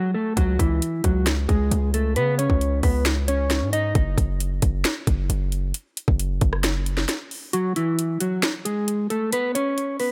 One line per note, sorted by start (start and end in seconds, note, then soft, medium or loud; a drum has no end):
0.00 0.13 F#3 medium
0.00 0.13 F#4 medium
0.14 0.35 A3 medium
0.14 0.35 A4 medium
0.37 0.58 C#2 loud
0.37 0.58 F#3 medium
0.37 0.57 F#4 medium
0.37 kick loud
0.37 closed hi-hat medium
0.59 0.81 C#2 loud
0.59 1.02 E3 medium
0.59 1.02 E4 medium
0.59 kick medium
0.59 closed hi-hat medium
0.82 closed hi-hat medium
1.04 1.47 C#2 loud
1.04 1.25 F#3 medium
1.04 1.25 F#4 medium
1.04 kick medium
1.04 closed hi-hat medium
1.27 snare loud
1.27 closed hi-hat medium
1.49 1.70 C#2 loud
1.49 1.91 G#3 medium
1.49 1.91 G#4 medium
1.49 kick loud
1.49 closed hi-hat medium
1.71 2.18 C#2 loud
1.71 closed hi-hat medium
1.94 2.15 A3 medium
1.94 2.14 A4 medium
1.94 closed hi-hat medium
2.16 2.48 C#3 loud
2.16 2.37 B3 medium
2.16 2.37 B4 loud
2.16 closed hi-hat medium
2.38 2.81 C#4 medium
2.38 2.81 C#5 medium
2.38 closed hi-hat medium
2.50 2.82 C#2 loud
2.50 kick medium
2.61 closed hi-hat medium
2.83 3.63 C#2 loud
2.83 3.04 B3 medium
2.83 3.04 B4 medium
2.83 kick medium
2.83 open hi-hat medium
3.06 snare loud
3.06 closed hi-hat medium
3.28 3.71 C#4 medium
3.28 3.70 C#5 medium
3.28 closed hi-hat medium
3.50 snare medium
3.50 closed hi-hat medium
3.62 3.94 G#2 loud
3.73 3.94 D#4 medium
3.73 3.93 D#5 medium
3.73 closed hi-hat medium
3.95 4.17 F#1 loud
3.95 kick loud
3.95 closed hi-hat medium
4.18 4.61 F#1 loud
4.18 kick medium
4.18 closed hi-hat medium
4.40 closed hi-hat medium
4.62 4.84 F#1 loud
4.62 kick medium
4.62 closed hi-hat medium
4.85 snare loud
4.85 closed hi-hat medium
5.07 5.29 F#1 loud
5.07 kick loud
5.07 closed hi-hat medium
5.30 5.73 F#1 loud
5.30 closed hi-hat medium
5.52 closed hi-hat medium
5.74 closed hi-hat medium
5.97 closed hi-hat medium
6.08 6.40 F#1 loud
6.08 kick loud
6.20 closed hi-hat medium
6.41 7.06 F#1 loud
6.41 kick medium
6.41 closed hi-hat medium
6.53 cross-stick medium
6.64 snare loud
6.64 closed hi-hat medium
6.86 closed hi-hat medium
6.97 snare medium
7.09 snare medium
7.09 closed hi-hat medium
7.31 open hi-hat medium
7.53 7.74 F#3 medium
7.53 7.74 F#4 loud
7.53 closed hi-hat medium
7.76 8.19 E3 medium
7.76 8.18 E4 medium
7.76 closed hi-hat medium
7.99 closed hi-hat medium
8.20 8.41 F#3 medium
8.20 8.41 F#4 medium
8.20 closed hi-hat medium
8.43 snare loud
8.43 closed hi-hat medium
8.65 9.08 G#3 medium
8.65 9.07 G#4 medium
8.65 closed hi-hat medium
8.88 closed hi-hat medium
9.10 9.31 A3 medium
9.10 9.31 A4 medium
9.10 closed hi-hat medium
9.33 9.54 B3 medium
9.33 9.53 B4 loud
9.33 closed hi-hat medium
9.55 9.97 C#4 medium
9.55 9.97 C#5 medium
9.55 closed hi-hat medium
9.78 closed hi-hat medium
10.00 10.12 B3 medium
10.00 10.12 B4 medium
10.00 open hi-hat medium